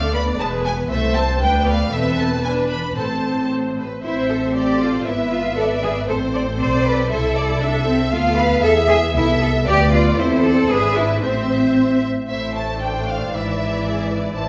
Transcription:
0.00 0.40 D2 medium
0.00 0.40 D3 medium
0.00 0.12 A3 medium
0.00 0.12 A4 medium
0.00 0.39 D5 medium
0.00 0.13 F5 medium
0.14 0.39 B3 medium
0.14 0.39 B4 medium
0.14 0.22 B5 medium
0.38 0.90 E1 medium
0.38 0.90 E2 medium
0.38 0.63 G#3 medium
0.38 0.63 G#4 medium
0.38 0.90 B4 medium
0.38 0.48 A5 medium
0.65 0.90 B3 medium
0.65 0.90 B4 medium
0.65 0.74 G#5 medium
0.90 1.40 C2 medium
0.90 1.14 A3 medium
0.90 1.14 A4 medium
0.90 1.40 C5 medium
0.90 1.16 E5 medium
1.15 1.41 C4 medium
1.15 1.41 C5 medium
1.15 1.41 A5 medium
1.40 1.93 D2 medium
1.40 1.64 D4 medium
1.40 1.64 B4 soft
1.40 1.91 B4 medium
1.40 1.67 G5 medium
1.66 1.92 B3 medium
1.66 1.92 D5 medium
1.66 1.93 F5 medium
1.92 2.93 E1 medium
1.92 2.93 E2 medium
1.92 2.40 C4 medium
1.92 2.40 A4 medium
1.92 2.95 B4 medium
1.92 2.18 E5 medium
2.19 2.45 A5 medium
2.44 2.97 D4 medium
2.44 2.96 B4 medium
2.44 2.52 G#5 medium
2.70 2.96 B5 medium
2.96 3.82 A1 soft
2.96 3.81 A2 soft
2.96 3.81 C4 soft
2.96 3.45 A4 soft
2.96 3.83 C5 soft
2.96 3.49 A5 medium
3.50 3.58 A4 soft
3.77 4.03 B4 soft
4.02 5.03 A1 soft
4.02 5.02 C4 soft
4.02 4.28 E4 medium
4.02 4.51 C5 medium
4.02 4.51 C5 soft
4.02 4.52 E5 soft
4.30 4.56 A4 medium
4.55 4.81 G4 medium
4.55 5.06 A4 medium
4.55 5.07 C5 soft
4.55 5.07 D5 medium
4.82 5.07 F4 medium
5.06 6.07 G#1 medium
5.06 5.56 B3 medium
5.06 5.32 E4 medium
5.06 5.55 B4 medium
5.06 6.06 E5 medium
5.06 5.58 E5 medium
5.32 5.57 F4 medium
5.56 6.07 B3 soft
5.56 5.65 A4 medium
5.56 6.07 B4 medium
5.56 6.08 D5 medium
5.83 5.91 G#4 medium
6.08 6.60 A1 medium
6.08 7.11 C4 medium
6.08 7.09 A4 medium
6.08 6.17 A4 medium
6.08 6.59 C5 medium
6.08 7.09 C5 medium
6.35 6.43 D5 medium
6.60 7.11 B1 medium
6.60 6.85 C5 medium
6.60 7.10 D5 medium
6.86 7.11 B4 medium
7.10 8.13 C2 medium
7.10 7.60 E4 medium
7.10 8.60 A4 medium
7.10 7.86 A4 medium
7.10 7.20 C5 medium
7.10 7.36 E5 medium
7.37 7.62 D5 medium
7.37 7.45 D5 medium
7.61 7.87 D4 medium
7.61 8.11 E5 medium
7.61 8.13 E5 medium
7.87 8.12 C4 medium
8.12 8.64 D2 medium
8.12 9.63 B3 medium
8.12 8.36 F4 medium
8.12 8.63 F5 medium
8.12 8.64 F5 medium
8.38 8.64 B4 medium
8.63 9.14 E2 medium
8.63 9.15 G#4 medium
8.63 8.71 A4 loud
8.63 9.14 E5 medium
8.89 8.97 G#4 medium
9.15 9.67 C2 medium
9.15 9.40 E4 medium
9.15 9.65 A4 medium
9.15 9.65 E5 medium
9.15 9.66 E5 medium
9.41 9.49 A4 medium
9.66 10.18 D2 medium
9.66 10.17 B3 medium
9.66 9.92 G4 loud
9.66 10.18 B4 medium
9.66 10.18 D5 medium
9.66 10.17 D5 medium
9.93 10.18 F4 medium
10.17 10.66 E2 medium
10.17 10.66 C4 medium
10.17 10.44 E4 medium
10.17 10.66 A4 medium
10.17 10.70 C5 medium
10.17 10.27 C5 medium
10.44 10.70 A4 medium
10.44 10.70 D5 medium
10.70 11.23 G#1 medium
10.70 11.22 D4 medium
10.70 10.97 G#4 medium
10.70 11.23 B4 medium
10.70 11.22 B4 medium
10.70 11.22 E5 medium
10.96 11.23 E4 medium
11.22 12.08 A1 medium
11.22 12.01 C4 medium
11.22 12.09 C4 medium
11.22 12.01 C5 medium
11.22 12.09 C5 medium
11.22 12.08 E5 medium
12.29 13.30 A1 soft
12.29 13.30 A2 soft
12.29 13.30 A3 soft
12.29 12.78 E4 soft
12.29 12.78 C5 soft
12.29 12.54 E5 medium
12.56 12.81 A5 medium
12.82 13.34 D4 soft
12.82 13.33 C5 soft
12.82 14.49 D5 soft
12.82 13.08 G5 medium
13.09 13.34 F5 medium
13.34 14.37 G#1 soft
13.34 14.37 G#2 soft
13.34 14.36 E3 soft
13.34 14.36 E4 soft
13.34 13.85 B4 soft
13.34 14.11 E5 medium
13.86 14.11 G#4 medium
14.11 14.36 B4 soft
14.36 14.49 A1 soft
14.36 14.49 A2 soft
14.36 14.49 E3 soft
14.36 14.49 E4 soft
14.36 14.49 C5 soft
14.36 14.49 A5 medium

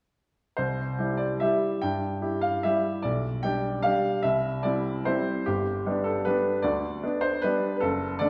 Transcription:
0.57 0.98 C2 soft
0.57 1.19 C5 soft
0.99 1.37 G3 soft
0.99 1.37 E4 soft
0.99 1.38 G4 soft
1.17 1.40 D5 soft
1.40 1.78 G3 soft
1.40 1.78 E4 soft
1.40 1.79 G4 soft
1.40 1.81 E5 medium
1.82 2.22 G2 soft
1.82 2.43 G5 medium
2.22 2.60 E4 soft
2.22 2.60 G4 soft
2.41 2.63 F5 soft
2.63 3.01 G3 soft
2.63 3.01 E4 soft
2.63 3.01 G4 soft
2.63 3.04 E5 medium
3.02 3.43 B1 soft
3.02 3.43 D5 medium
3.43 3.81 G3 soft
3.43 3.81 D4 soft
3.43 3.81 G4 soft
3.43 3.84 G5 medium
3.83 4.20 G3 soft
3.83 4.21 D4 soft
3.83 4.21 G4 soft
3.83 4.24 F5 medium
4.23 4.63 C2 soft
4.23 4.63 E5 medium
4.63 5.02 G3 soft
4.63 5.02 C4 soft
4.63 5.02 E4 soft
4.63 5.05 D5 medium
5.05 5.43 G3 soft
5.05 5.43 C4 soft
5.05 5.43 E4 soft
5.05 5.46 C5 medium
5.46 5.84 G1 soft
5.46 6.05 G4 medium
5.86 6.22 G3 soft
5.86 6.22 B3 soft
5.86 6.22 D4 soft
6.04 6.25 A4 medium
6.25 6.61 G3 soft
6.25 6.62 B3 soft
6.25 6.61 D4 soft
6.25 6.64 B4 medium
6.62 7.02 D2 soft
6.62 7.22 D5 medium
7.03 7.40 B3 soft
7.03 7.40 D4 soft
7.21 7.42 C5 medium
7.42 7.79 G3 soft
7.42 7.79 B3 soft
7.42 7.80 D4 soft
7.42 7.75 B4 medium
7.77 8.20 A4 medium
7.77 7.83 B4 soft
7.82 8.20 F#1 soft
8.19 8.30 D3 soft
8.19 8.30 A3 soft
8.19 8.30 D4 soft
8.19 8.30 D5 medium

